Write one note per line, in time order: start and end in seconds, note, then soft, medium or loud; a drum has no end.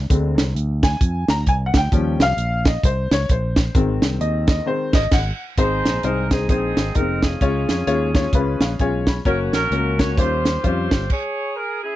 0.10 0.37 D2 loud
0.10 0.43 D3 soft
0.10 0.43 G#3 soft
0.10 0.43 C4 medium
0.10 kick loud
0.10 closed hi-hat medium
0.37 0.53 C2 medium
0.37 snare loud
0.37 closed hi-hat medium
0.55 0.94 D2 medium
0.55 closed hi-hat medium
0.83 1.26 G#5 medium
0.83 kick loud
0.83 snare loud
0.83 closed hi-hat medium
1.01 1.24 F2 medium
1.01 kick loud
1.01 closed hi-hat medium
1.28 1.44 D2 medium
1.28 1.48 A#5 medium
1.28 snare loud
1.28 closed hi-hat medium
1.47 1.70 C2 medium
1.47 1.54 G#5 medium
1.47 kick medium
1.47 closed hi-hat medium
1.66 1.74 F#5 medium
1.74 1.90 D2 medium
1.74 2.18 G5 medium
1.74 kick medium
1.74 snare loud
1.74 closed hi-hat medium
1.92 2.15 D#2 loud
1.92 2.25 F3 medium
1.92 2.26 G3 medium
1.92 2.26 C#4 medium
1.92 kick loud
1.92 closed hi-hat medium
2.19 2.35 C2 medium
2.19 2.68 F5 loud
2.19 snare loud
2.19 closed hi-hat medium
2.37 2.76 A#1 medium
2.37 closed hi-hat medium
2.65 2.85 D#5 medium
2.65 kick loud
2.65 snare loud
2.65 closed hi-hat medium
2.83 3.07 C2 medium
2.83 3.13 C5 medium
2.83 kick loud
2.83 closed hi-hat loud
3.11 3.27 C#2 medium
3.11 3.31 C#5 medium
3.11 snare loud
3.11 closed hi-hat medium
3.29 3.68 A#1 medium
3.29 3.73 C5 medium
3.29 kick loud
3.29 closed hi-hat medium
3.56 kick medium
3.56 snare loud
3.56 closed hi-hat medium
3.75 3.98 G#1 loud
3.75 4.64 D#3 medium
3.75 4.65 G#3 soft
3.75 4.65 C4 medium
3.75 kick loud
3.75 closed hi-hat medium
4.02 4.18 C2 medium
4.02 snare medium
4.02 closed hi-hat medium
4.20 4.59 D#2 medium
4.20 4.46 D#5 medium
4.20 closed hi-hat medium
4.48 4.66 D#5 medium
4.48 kick loud
4.48 snare loud
4.48 closed hi-hat medium
4.66 4.91 D#3 soft
4.66 4.91 G#3 soft
4.66 4.91 C4 soft
4.66 4.95 C5 medium
4.93 5.06 G#1 loud
4.93 5.13 D#5 medium
4.93 kick loud
4.93 snare loud
4.93 crash medium
5.11 5.31 G#1 medium
5.11 5.38 F#5 medium
5.11 kick loud
5.11 snare medium
5.11 crash medium
5.57 5.81 G#1 loud
5.57 6.27 G#2 medium
5.57 5.94 G#3 medium
5.57 5.94 C4 medium
5.57 5.94 D#4 medium
5.57 6.46 D#4 medium
5.57 6.30 G#4 medium
5.57 5.94 C5 medium
5.57 6.01 C5 loud
5.57 kick medium
5.57 closed hi-hat medium
5.85 6.01 A#1 medium
5.85 snare medium
5.85 closed hi-hat medium
6.03 6.49 C2 medium
6.03 6.24 G#3 medium
6.03 6.24 C4 medium
6.03 6.24 D#4 medium
6.03 6.31 A#4 medium
6.03 6.24 C5 medium
6.03 closed hi-hat medium
6.31 6.45 G#3 medium
6.31 6.45 C4 medium
6.31 6.45 D#4 soft
6.31 6.48 G#4 medium
6.31 6.45 C5 medium
6.31 kick medium
6.31 snare medium
6.31 closed hi-hat medium
6.49 6.73 A#1 medium
6.49 6.86 G#3 medium
6.49 6.86 C4 medium
6.49 7.37 C4 medium
6.49 6.86 D#4 medium
6.49 7.37 D#4 medium
6.49 6.92 G#4 medium
6.49 6.86 C5 medium
6.49 kick loud
6.49 closed hi-hat medium
6.77 6.93 G#1 medium
6.77 snare loud
6.77 closed hi-hat medium
6.95 7.34 F1 medium
6.95 7.31 G#3 medium
6.95 7.02 A#3 soft
6.95 7.32 D#4 medium
6.95 7.22 A#4 medium
6.95 7.32 D#5 medium
6.95 kick medium
6.95 closed hi-hat medium
7.00 7.34 C4 medium
7.22 9.03 C#4 soft
7.22 9.03 F4 medium
7.22 9.07 G#4 medium
7.22 kick medium
7.22 snare loud
7.22 closed hi-hat medium
7.41 7.64 C#2 loud
7.41 8.11 C#3 soft
7.41 7.78 G#3 medium
7.41 7.78 C#4 medium
7.41 7.78 F4 medium
7.41 7.78 C#5 medium
7.41 kick medium
7.41 closed hi-hat medium
7.69 7.85 F2 medium
7.69 snare medium
7.69 closed hi-hat medium
7.87 8.26 D#2 medium
7.87 8.08 G#3 medium
7.87 8.07 C#4 medium
7.87 8.08 F4 medium
7.87 8.08 C#5 medium
7.87 closed hi-hat medium
8.15 8.28 G#3 medium
8.15 8.29 C#4 medium
8.15 8.29 F4 medium
8.15 8.29 C#5 medium
8.15 kick loud
8.15 snare loud
8.15 closed hi-hat medium
8.32 8.56 C#2 medium
8.32 9.03 C#3 medium
8.32 8.70 G#3 medium
8.32 8.70 C#4 medium
8.32 8.70 F4 medium
8.32 8.70 B4 medium
8.32 kick loud
8.32 closed hi-hat medium
8.60 8.76 A#1 medium
8.60 8.78 F5 soft
8.60 snare loud
8.60 closed hi-hat medium
8.79 9.19 B1 medium
8.79 9.16 G#3 medium
8.79 9.16 C#4 medium
8.79 9.17 F4 medium
8.79 9.17 C#5 medium
8.79 9.06 G#5 medium
8.79 kick medium
8.79 closed hi-hat medium
9.07 9.25 B5 medium
9.07 kick medium
9.07 snare loud
9.07 closed hi-hat medium
9.25 9.49 F#1 loud
9.25 9.62 A#3 medium
9.25 9.52 C#4 medium
9.25 9.62 C#4 medium
9.25 9.52 F#4 medium
9.25 9.62 F#4 medium
9.25 9.38 A#4 medium
9.25 9.62 C#5 medium
9.25 kick medium
9.25 closed hi-hat medium
9.52 9.68 A#1 medium
9.52 10.14 C#4 medium
9.52 10.14 F#4 medium
9.52 9.96 A#4 medium
9.52 snare medium
9.52 closed hi-hat medium
9.71 10.17 C#2 medium
9.71 9.92 A#3 medium
9.71 9.92 C#4 medium
9.71 9.92 F#4 medium
9.71 9.92 A#4 medium
9.71 closed hi-hat medium
9.99 10.12 A#3 medium
9.99 10.13 C#4 soft
9.99 10.13 F#4 soft
9.99 10.17 C#5 medium
9.99 10.13 C#5 medium
9.99 kick medium
9.99 snare medium
9.99 closed hi-hat medium
10.17 10.57 D#2 medium
10.17 10.87 D#3 soft
10.17 10.54 G3 medium
10.17 10.54 C#4 soft
10.17 10.54 F4 soft
10.17 10.65 F4 medium
10.17 10.64 G4 medium
10.17 10.54 C5 medium
10.17 10.64 C5 medium
10.17 kick loud
10.17 closed hi-hat medium
10.45 snare medium
10.45 closed hi-hat medium
10.63 10.87 F2 medium
10.63 11.00 G3 medium
10.63 11.00 C#4 medium
10.63 11.00 F4 medium
10.63 11.07 F4 medium
10.63 11.07 G4 soft
10.63 11.00 C5 medium
10.63 11.07 C5 medium
10.63 kick medium
10.63 closed hi-hat medium
10.91 11.07 G1 medium
10.91 kick medium
10.91 snare loud
10.91 closed hi-hat medium
11.10 11.82 G#4 medium
11.10 11.56 C#5 medium
11.10 kick medium
11.10 crash medium
11.56 11.83 A#4 medium
11.83 11.96 C#4 medium
11.83 11.96 E4 soft
11.83 11.96 G#4 medium